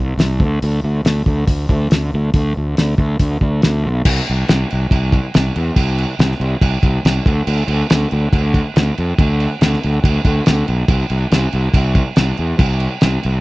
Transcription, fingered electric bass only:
0, 0, Header, 1, 2, 480
1, 0, Start_track
1, 0, Tempo, 427960
1, 695, Time_signature, 4, 2, 24, 8
1, 15036, End_track
2, 0, Start_track
2, 0, Title_t, "Fingered electric bass"
2, 0, Program_c, 0, 33
2, 0, Note_on_c, 0, 36, 75
2, 186, Note_off_c, 0, 36, 0
2, 195, Note_on_c, 0, 36, 85
2, 419, Note_off_c, 0, 36, 0
2, 449, Note_on_c, 0, 38, 88
2, 668, Note_off_c, 0, 38, 0
2, 702, Note_on_c, 0, 38, 101
2, 915, Note_off_c, 0, 38, 0
2, 938, Note_on_c, 0, 38, 88
2, 1154, Note_off_c, 0, 38, 0
2, 1173, Note_on_c, 0, 38, 74
2, 1392, Note_off_c, 0, 38, 0
2, 1415, Note_on_c, 0, 38, 85
2, 1634, Note_off_c, 0, 38, 0
2, 1661, Note_on_c, 0, 38, 74
2, 1878, Note_off_c, 0, 38, 0
2, 1902, Note_on_c, 0, 38, 82
2, 2119, Note_off_c, 0, 38, 0
2, 2147, Note_on_c, 0, 38, 84
2, 2362, Note_off_c, 0, 38, 0
2, 2399, Note_on_c, 0, 38, 93
2, 2609, Note_off_c, 0, 38, 0
2, 2623, Note_on_c, 0, 38, 94
2, 2841, Note_off_c, 0, 38, 0
2, 2884, Note_on_c, 0, 38, 91
2, 3093, Note_off_c, 0, 38, 0
2, 3121, Note_on_c, 0, 38, 77
2, 3332, Note_off_c, 0, 38, 0
2, 3345, Note_on_c, 0, 38, 86
2, 3563, Note_off_c, 0, 38, 0
2, 3586, Note_on_c, 0, 38, 84
2, 3804, Note_off_c, 0, 38, 0
2, 3825, Note_on_c, 0, 38, 72
2, 4043, Note_off_c, 0, 38, 0
2, 4091, Note_on_c, 0, 38, 83
2, 4298, Note_off_c, 0, 38, 0
2, 4327, Note_on_c, 0, 35, 75
2, 4535, Note_off_c, 0, 35, 0
2, 4552, Note_on_c, 0, 36, 99
2, 4705, Note_off_c, 0, 36, 0
2, 4817, Note_on_c, 0, 36, 93
2, 4962, Note_off_c, 0, 36, 0
2, 5047, Note_on_c, 0, 36, 98
2, 5195, Note_off_c, 0, 36, 0
2, 5301, Note_on_c, 0, 36, 78
2, 5444, Note_off_c, 0, 36, 0
2, 5509, Note_on_c, 0, 36, 84
2, 5815, Note_off_c, 0, 36, 0
2, 6013, Note_on_c, 0, 36, 89
2, 6158, Note_off_c, 0, 36, 0
2, 6238, Note_on_c, 0, 40, 97
2, 6388, Note_off_c, 0, 40, 0
2, 6464, Note_on_c, 0, 36, 102
2, 6771, Note_off_c, 0, 36, 0
2, 6943, Note_on_c, 0, 36, 95
2, 7097, Note_off_c, 0, 36, 0
2, 7177, Note_on_c, 0, 36, 91
2, 7333, Note_off_c, 0, 36, 0
2, 7419, Note_on_c, 0, 36, 76
2, 7574, Note_off_c, 0, 36, 0
2, 7664, Note_on_c, 0, 36, 84
2, 7817, Note_off_c, 0, 36, 0
2, 7907, Note_on_c, 0, 36, 91
2, 8059, Note_off_c, 0, 36, 0
2, 8144, Note_on_c, 0, 38, 90
2, 8297, Note_off_c, 0, 38, 0
2, 8380, Note_on_c, 0, 38, 97
2, 8534, Note_off_c, 0, 38, 0
2, 8611, Note_on_c, 0, 38, 97
2, 8768, Note_off_c, 0, 38, 0
2, 8870, Note_on_c, 0, 38, 84
2, 9021, Note_off_c, 0, 38, 0
2, 9109, Note_on_c, 0, 38, 94
2, 9259, Note_off_c, 0, 38, 0
2, 9342, Note_on_c, 0, 38, 85
2, 9647, Note_off_c, 0, 38, 0
2, 9831, Note_on_c, 0, 38, 85
2, 9980, Note_off_c, 0, 38, 0
2, 10076, Note_on_c, 0, 41, 98
2, 10224, Note_off_c, 0, 41, 0
2, 10301, Note_on_c, 0, 38, 105
2, 10606, Note_off_c, 0, 38, 0
2, 10784, Note_on_c, 0, 38, 91
2, 10935, Note_off_c, 0, 38, 0
2, 11041, Note_on_c, 0, 38, 82
2, 11186, Note_off_c, 0, 38, 0
2, 11258, Note_on_c, 0, 38, 91
2, 11410, Note_off_c, 0, 38, 0
2, 11499, Note_on_c, 0, 38, 78
2, 11651, Note_off_c, 0, 38, 0
2, 11759, Note_on_c, 0, 38, 92
2, 11904, Note_off_c, 0, 38, 0
2, 11984, Note_on_c, 0, 35, 83
2, 12134, Note_off_c, 0, 35, 0
2, 12217, Note_on_c, 0, 36, 98
2, 12369, Note_off_c, 0, 36, 0
2, 12451, Note_on_c, 0, 36, 95
2, 12604, Note_off_c, 0, 36, 0
2, 12694, Note_on_c, 0, 36, 85
2, 12846, Note_off_c, 0, 36, 0
2, 12936, Note_on_c, 0, 36, 88
2, 13088, Note_off_c, 0, 36, 0
2, 13168, Note_on_c, 0, 36, 89
2, 13474, Note_off_c, 0, 36, 0
2, 13659, Note_on_c, 0, 36, 89
2, 13809, Note_off_c, 0, 36, 0
2, 13895, Note_on_c, 0, 40, 91
2, 14046, Note_off_c, 0, 40, 0
2, 14116, Note_on_c, 0, 36, 95
2, 14426, Note_off_c, 0, 36, 0
2, 14615, Note_on_c, 0, 36, 92
2, 14766, Note_off_c, 0, 36, 0
2, 14859, Note_on_c, 0, 36, 97
2, 15008, Note_off_c, 0, 36, 0
2, 15036, End_track
0, 0, End_of_file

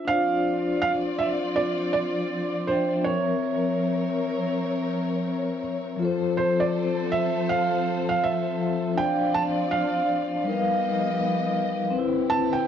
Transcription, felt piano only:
0, 0, Header, 1, 2, 480
1, 0, Start_track
1, 0, Tempo, 740741
1, 52, Time_signature, 4, 2, 24, 8
1, 8213, End_track
2, 0, Start_track
2, 0, Title_t, "Felt piano"
2, 0, Program_c, 0, 0
2, 49, Note_on_c, 0, 77, 103
2, 519, Note_off_c, 0, 77, 0
2, 529, Note_on_c, 0, 77, 106
2, 584, Note_off_c, 0, 77, 0
2, 768, Note_on_c, 0, 76, 91
2, 822, Note_off_c, 0, 76, 0
2, 1009, Note_on_c, 0, 74, 90
2, 1234, Note_off_c, 0, 74, 0
2, 1251, Note_on_c, 0, 74, 92
2, 1732, Note_on_c, 0, 72, 78
2, 1746, Note_off_c, 0, 74, 0
2, 1973, Note_on_c, 0, 73, 82
2, 1980, Note_off_c, 0, 72, 0
2, 3627, Note_off_c, 0, 73, 0
2, 4129, Note_on_c, 0, 72, 80
2, 4277, Note_on_c, 0, 74, 82
2, 4283, Note_off_c, 0, 72, 0
2, 4588, Note_off_c, 0, 74, 0
2, 4612, Note_on_c, 0, 76, 92
2, 4855, Note_on_c, 0, 77, 93
2, 4860, Note_off_c, 0, 76, 0
2, 5232, Note_off_c, 0, 77, 0
2, 5242, Note_on_c, 0, 77, 87
2, 5336, Note_off_c, 0, 77, 0
2, 5337, Note_on_c, 0, 76, 89
2, 5816, Note_on_c, 0, 79, 99
2, 5829, Note_off_c, 0, 76, 0
2, 6055, Note_on_c, 0, 81, 98
2, 6061, Note_off_c, 0, 79, 0
2, 6109, Note_off_c, 0, 81, 0
2, 6293, Note_on_c, 0, 77, 86
2, 7227, Note_off_c, 0, 77, 0
2, 7968, Note_on_c, 0, 81, 103
2, 8118, Note_on_c, 0, 79, 88
2, 8122, Note_off_c, 0, 81, 0
2, 8213, Note_off_c, 0, 79, 0
2, 8213, End_track
0, 0, End_of_file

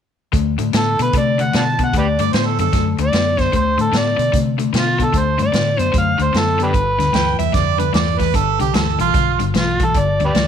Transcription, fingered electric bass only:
0, 0, Header, 1, 2, 480
1, 0, Start_track
1, 0, Tempo, 400802
1, 390, Time_signature, 4, 2, 24, 8
1, 12545, End_track
2, 0, Start_track
2, 0, Title_t, "Fingered electric bass"
2, 0, Program_c, 0, 33
2, 400, Note_on_c, 0, 38, 78
2, 685, Note_off_c, 0, 38, 0
2, 706, Note_on_c, 0, 45, 71
2, 867, Note_off_c, 0, 45, 0
2, 882, Note_on_c, 0, 45, 78
2, 1165, Note_off_c, 0, 45, 0
2, 1189, Note_on_c, 0, 47, 75
2, 1349, Note_off_c, 0, 47, 0
2, 1359, Note_on_c, 0, 48, 80
2, 1810, Note_off_c, 0, 48, 0
2, 1846, Note_on_c, 0, 47, 73
2, 2294, Note_off_c, 0, 47, 0
2, 2313, Note_on_c, 0, 38, 76
2, 2601, Note_off_c, 0, 38, 0
2, 2624, Note_on_c, 0, 43, 73
2, 2786, Note_off_c, 0, 43, 0
2, 2799, Note_on_c, 0, 45, 87
2, 3084, Note_off_c, 0, 45, 0
2, 3097, Note_on_c, 0, 42, 88
2, 3263, Note_off_c, 0, 42, 0
2, 3271, Note_on_c, 0, 42, 72
2, 3560, Note_off_c, 0, 42, 0
2, 3574, Note_on_c, 0, 38, 82
2, 3741, Note_off_c, 0, 38, 0
2, 3751, Note_on_c, 0, 42, 78
2, 4206, Note_off_c, 0, 42, 0
2, 4229, Note_on_c, 0, 38, 79
2, 4516, Note_off_c, 0, 38, 0
2, 4523, Note_on_c, 0, 45, 70
2, 4692, Note_off_c, 0, 45, 0
2, 4699, Note_on_c, 0, 45, 82
2, 4994, Note_off_c, 0, 45, 0
2, 5013, Note_on_c, 0, 47, 78
2, 5181, Note_off_c, 0, 47, 0
2, 5194, Note_on_c, 0, 48, 73
2, 5648, Note_off_c, 0, 48, 0
2, 5670, Note_on_c, 0, 47, 84
2, 6125, Note_off_c, 0, 47, 0
2, 6152, Note_on_c, 0, 38, 70
2, 6441, Note_off_c, 0, 38, 0
2, 6458, Note_on_c, 0, 43, 72
2, 6619, Note_off_c, 0, 43, 0
2, 6627, Note_on_c, 0, 45, 79
2, 6918, Note_off_c, 0, 45, 0
2, 6933, Note_on_c, 0, 42, 79
2, 7100, Note_off_c, 0, 42, 0
2, 7108, Note_on_c, 0, 42, 84
2, 7398, Note_off_c, 0, 42, 0
2, 7413, Note_on_c, 0, 38, 71
2, 7580, Note_off_c, 0, 38, 0
2, 7592, Note_on_c, 0, 42, 84
2, 8046, Note_off_c, 0, 42, 0
2, 8073, Note_on_c, 0, 31, 80
2, 8357, Note_off_c, 0, 31, 0
2, 8364, Note_on_c, 0, 38, 72
2, 8536, Note_off_c, 0, 38, 0
2, 8541, Note_on_c, 0, 38, 84
2, 8835, Note_off_c, 0, 38, 0
2, 8850, Note_on_c, 0, 40, 80
2, 9019, Note_off_c, 0, 40, 0
2, 9030, Note_on_c, 0, 41, 82
2, 9485, Note_off_c, 0, 41, 0
2, 9503, Note_on_c, 0, 40, 89
2, 9962, Note_off_c, 0, 40, 0
2, 9987, Note_on_c, 0, 31, 75
2, 10278, Note_off_c, 0, 31, 0
2, 10293, Note_on_c, 0, 36, 73
2, 10461, Note_off_c, 0, 36, 0
2, 10466, Note_on_c, 0, 38, 86
2, 10757, Note_off_c, 0, 38, 0
2, 10768, Note_on_c, 0, 35, 79
2, 10938, Note_off_c, 0, 35, 0
2, 10947, Note_on_c, 0, 35, 83
2, 11238, Note_off_c, 0, 35, 0
2, 11253, Note_on_c, 0, 31, 74
2, 11420, Note_off_c, 0, 31, 0
2, 11427, Note_on_c, 0, 35, 74
2, 11884, Note_off_c, 0, 35, 0
2, 11905, Note_on_c, 0, 31, 78
2, 12197, Note_off_c, 0, 31, 0
2, 12213, Note_on_c, 0, 38, 66
2, 12380, Note_off_c, 0, 38, 0
2, 12393, Note_on_c, 0, 38, 81
2, 12545, Note_off_c, 0, 38, 0
2, 12545, End_track
0, 0, End_of_file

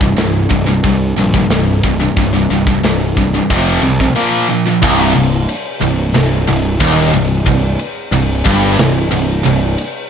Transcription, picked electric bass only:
0, 0, Header, 1, 2, 480
1, 0, Start_track
1, 0, Key_signature, -3, "minor"
1, 0, Tempo, 661521
1, 1575, Time_signature, 4, 2, 24, 8
1, 7327, End_track
2, 0, Start_track
2, 0, Title_t, "Picked electric bass"
2, 0, Program_c, 0, 34
2, 0, Note_on_c, 0, 24, 88
2, 88, Note_off_c, 0, 24, 0
2, 120, Note_on_c, 0, 24, 86
2, 329, Note_off_c, 0, 24, 0
2, 370, Note_on_c, 0, 24, 88
2, 574, Note_off_c, 0, 24, 0
2, 610, Note_on_c, 0, 36, 89
2, 815, Note_off_c, 0, 36, 0
2, 844, Note_on_c, 0, 34, 84
2, 1052, Note_off_c, 0, 34, 0
2, 1089, Note_on_c, 0, 24, 86
2, 1498, Note_off_c, 0, 24, 0
2, 1572, Note_on_c, 0, 24, 90
2, 1777, Note_off_c, 0, 24, 0
2, 1821, Note_on_c, 0, 24, 89
2, 2022, Note_off_c, 0, 24, 0
2, 2054, Note_on_c, 0, 24, 84
2, 2462, Note_off_c, 0, 24, 0
2, 2544, Note_on_c, 0, 29, 90
2, 2744, Note_off_c, 0, 29, 0
2, 2770, Note_on_c, 0, 36, 86
2, 2976, Note_off_c, 0, 36, 0
2, 3505, Note_on_c, 0, 24, 94
2, 3724, Note_off_c, 0, 24, 0
2, 3744, Note_on_c, 0, 24, 84
2, 3963, Note_off_c, 0, 24, 0
2, 4228, Note_on_c, 0, 24, 84
2, 4444, Note_off_c, 0, 24, 0
2, 4469, Note_on_c, 0, 24, 85
2, 4684, Note_off_c, 0, 24, 0
2, 4709, Note_on_c, 0, 24, 80
2, 4924, Note_off_c, 0, 24, 0
2, 4940, Note_on_c, 0, 27, 98
2, 5159, Note_off_c, 0, 27, 0
2, 5185, Note_on_c, 0, 24, 88
2, 5401, Note_off_c, 0, 24, 0
2, 5416, Note_on_c, 0, 24, 82
2, 5636, Note_off_c, 0, 24, 0
2, 5892, Note_on_c, 0, 24, 84
2, 6113, Note_off_c, 0, 24, 0
2, 6139, Note_on_c, 0, 31, 102
2, 6357, Note_off_c, 0, 31, 0
2, 6376, Note_on_c, 0, 24, 81
2, 6595, Note_off_c, 0, 24, 0
2, 6616, Note_on_c, 0, 24, 82
2, 6835, Note_off_c, 0, 24, 0
2, 6863, Note_on_c, 0, 24, 82
2, 7078, Note_off_c, 0, 24, 0
2, 7327, End_track
0, 0, End_of_file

